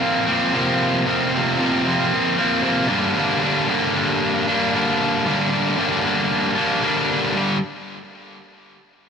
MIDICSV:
0, 0, Header, 1, 2, 480
1, 0, Start_track
1, 0, Key_signature, -2, "minor"
1, 0, Tempo, 523104
1, 980, Time_signature, 4, 2, 24, 8
1, 8341, End_track
2, 0, Start_track
2, 0, Title_t, "Overdriven electric guitar"
2, 0, Program_c, 0, 29
2, 0, Note_on_c, 0, 53, 57
2, 0, Note_on_c, 0, 58, 70
2, 0, Note_on_c, 0, 60, 66
2, 233, Note_off_c, 0, 60, 0
2, 244, Note_on_c, 0, 60, 71
2, 258, Note_off_c, 0, 58, 0
2, 259, Note_off_c, 0, 53, 0
2, 261, Note_on_c, 0, 58, 61
2, 270, Note_on_c, 0, 53, 57
2, 484, Note_on_c, 0, 48, 81
2, 485, Note_off_c, 0, 53, 0
2, 496, Note_on_c, 0, 53, 80
2, 497, Note_off_c, 0, 60, 0
2, 499, Note_off_c, 0, 58, 0
2, 502, Note_on_c, 0, 58, 85
2, 508, Note_on_c, 0, 60, 79
2, 965, Note_off_c, 0, 48, 0
2, 966, Note_on_c, 0, 41, 101
2, 971, Note_off_c, 0, 53, 0
2, 976, Note_on_c, 0, 48, 93
2, 980, Note_off_c, 0, 60, 0
2, 982, Note_off_c, 0, 58, 0
2, 982, Note_on_c, 0, 53, 92
2, 986, Note_on_c, 0, 58, 89
2, 991, Note_on_c, 0, 60, 114
2, 1208, Note_off_c, 0, 60, 0
2, 1219, Note_on_c, 0, 60, 74
2, 1229, Note_off_c, 0, 58, 0
2, 1233, Note_on_c, 0, 58, 70
2, 1234, Note_off_c, 0, 53, 0
2, 1245, Note_on_c, 0, 53, 52
2, 1436, Note_off_c, 0, 41, 0
2, 1439, Note_off_c, 0, 48, 0
2, 1447, Note_on_c, 0, 41, 81
2, 1448, Note_off_c, 0, 53, 0
2, 1450, Note_on_c, 0, 48, 85
2, 1459, Note_on_c, 0, 53, 100
2, 1460, Note_off_c, 0, 60, 0
2, 1465, Note_off_c, 0, 58, 0
2, 1469, Note_on_c, 0, 58, 95
2, 1471, Note_on_c, 0, 60, 89
2, 1683, Note_off_c, 0, 60, 0
2, 1694, Note_on_c, 0, 60, 74
2, 1706, Note_off_c, 0, 58, 0
2, 1710, Note_off_c, 0, 53, 0
2, 1710, Note_on_c, 0, 58, 61
2, 1721, Note_on_c, 0, 53, 54
2, 1936, Note_off_c, 0, 41, 0
2, 1938, Note_off_c, 0, 48, 0
2, 2161, Note_off_c, 0, 60, 0
2, 2172, Note_on_c, 0, 60, 68
2, 2182, Note_off_c, 0, 58, 0
2, 2185, Note_off_c, 0, 53, 0
2, 2186, Note_on_c, 0, 58, 66
2, 2196, Note_on_c, 0, 53, 59
2, 2403, Note_off_c, 0, 53, 0
2, 2405, Note_on_c, 0, 48, 84
2, 2414, Note_on_c, 0, 53, 81
2, 2423, Note_off_c, 0, 60, 0
2, 2424, Note_off_c, 0, 58, 0
2, 2427, Note_on_c, 0, 58, 81
2, 2434, Note_on_c, 0, 60, 89
2, 2638, Note_off_c, 0, 60, 0
2, 2641, Note_off_c, 0, 48, 0
2, 2641, Note_on_c, 0, 62, 91
2, 2645, Note_off_c, 0, 58, 0
2, 2646, Note_off_c, 0, 53, 0
2, 2649, Note_on_c, 0, 58, 73
2, 2657, Note_on_c, 0, 55, 79
2, 2663, Note_on_c, 0, 50, 68
2, 2672, Note_on_c, 0, 43, 69
2, 2887, Note_off_c, 0, 43, 0
2, 2891, Note_on_c, 0, 43, 88
2, 2893, Note_off_c, 0, 50, 0
2, 2904, Note_off_c, 0, 55, 0
2, 2904, Note_on_c, 0, 50, 92
2, 2908, Note_on_c, 0, 55, 101
2, 2914, Note_off_c, 0, 58, 0
2, 2916, Note_off_c, 0, 62, 0
2, 2918, Note_on_c, 0, 58, 97
2, 2920, Note_on_c, 0, 62, 107
2, 3131, Note_off_c, 0, 62, 0
2, 3135, Note_on_c, 0, 62, 80
2, 3140, Note_off_c, 0, 58, 0
2, 3144, Note_on_c, 0, 58, 57
2, 3153, Note_off_c, 0, 55, 0
2, 3157, Note_on_c, 0, 55, 61
2, 3378, Note_off_c, 0, 43, 0
2, 3380, Note_off_c, 0, 50, 0
2, 3381, Note_on_c, 0, 43, 79
2, 3391, Note_on_c, 0, 50, 85
2, 3394, Note_off_c, 0, 55, 0
2, 3396, Note_off_c, 0, 58, 0
2, 3398, Note_on_c, 0, 55, 95
2, 3400, Note_off_c, 0, 62, 0
2, 3400, Note_on_c, 0, 58, 92
2, 3403, Note_on_c, 0, 62, 100
2, 3633, Note_off_c, 0, 62, 0
2, 3637, Note_on_c, 0, 62, 74
2, 3645, Note_off_c, 0, 58, 0
2, 3649, Note_on_c, 0, 58, 59
2, 3655, Note_off_c, 0, 55, 0
2, 3659, Note_on_c, 0, 55, 57
2, 3869, Note_off_c, 0, 50, 0
2, 4103, Note_off_c, 0, 62, 0
2, 4107, Note_on_c, 0, 62, 78
2, 4116, Note_off_c, 0, 58, 0
2, 4120, Note_on_c, 0, 58, 81
2, 4129, Note_off_c, 0, 55, 0
2, 4133, Note_on_c, 0, 55, 59
2, 4349, Note_on_c, 0, 50, 80
2, 4354, Note_off_c, 0, 55, 0
2, 4358, Note_on_c, 0, 55, 85
2, 4363, Note_off_c, 0, 58, 0
2, 4366, Note_on_c, 0, 58, 89
2, 4372, Note_off_c, 0, 62, 0
2, 4376, Note_on_c, 0, 62, 69
2, 4820, Note_off_c, 0, 50, 0
2, 4823, Note_off_c, 0, 43, 0
2, 4826, Note_on_c, 0, 43, 101
2, 4829, Note_off_c, 0, 55, 0
2, 4831, Note_on_c, 0, 50, 97
2, 4835, Note_off_c, 0, 58, 0
2, 4840, Note_off_c, 0, 62, 0
2, 4840, Note_on_c, 0, 55, 110
2, 4846, Note_on_c, 0, 58, 101
2, 4851, Note_on_c, 0, 62, 105
2, 5058, Note_off_c, 0, 62, 0
2, 5069, Note_off_c, 0, 58, 0
2, 5069, Note_on_c, 0, 62, 72
2, 5080, Note_on_c, 0, 58, 70
2, 5081, Note_off_c, 0, 55, 0
2, 5092, Note_on_c, 0, 55, 58
2, 5286, Note_off_c, 0, 43, 0
2, 5296, Note_off_c, 0, 50, 0
2, 5297, Note_on_c, 0, 43, 103
2, 5303, Note_off_c, 0, 55, 0
2, 5307, Note_on_c, 0, 50, 99
2, 5312, Note_off_c, 0, 58, 0
2, 5314, Note_on_c, 0, 55, 89
2, 5316, Note_off_c, 0, 62, 0
2, 5323, Note_on_c, 0, 58, 90
2, 5327, Note_on_c, 0, 62, 87
2, 5536, Note_off_c, 0, 62, 0
2, 5546, Note_off_c, 0, 58, 0
2, 5547, Note_on_c, 0, 62, 67
2, 5557, Note_on_c, 0, 58, 66
2, 5563, Note_off_c, 0, 55, 0
2, 5574, Note_on_c, 0, 55, 59
2, 5780, Note_off_c, 0, 43, 0
2, 5785, Note_off_c, 0, 50, 0
2, 6001, Note_off_c, 0, 62, 0
2, 6012, Note_on_c, 0, 62, 79
2, 6017, Note_off_c, 0, 58, 0
2, 6028, Note_off_c, 0, 55, 0
2, 6028, Note_on_c, 0, 58, 71
2, 6039, Note_on_c, 0, 55, 59
2, 6256, Note_off_c, 0, 55, 0
2, 6257, Note_on_c, 0, 50, 69
2, 6261, Note_off_c, 0, 58, 0
2, 6267, Note_on_c, 0, 55, 81
2, 6272, Note_on_c, 0, 58, 85
2, 6274, Note_off_c, 0, 62, 0
2, 6285, Note_on_c, 0, 62, 96
2, 6724, Note_off_c, 0, 50, 0
2, 6729, Note_off_c, 0, 55, 0
2, 6732, Note_off_c, 0, 58, 0
2, 6737, Note_on_c, 0, 43, 106
2, 6738, Note_off_c, 0, 62, 0
2, 6748, Note_on_c, 0, 50, 102
2, 6755, Note_on_c, 0, 55, 101
2, 6930, Note_off_c, 0, 43, 0
2, 6936, Note_off_c, 0, 50, 0
2, 6939, Note_off_c, 0, 55, 0
2, 8341, End_track
0, 0, End_of_file